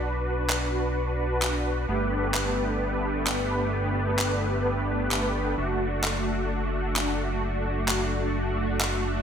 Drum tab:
CP |--x---x-|--x---x-|--x---x-|--x---x-|

CP |--x---x-|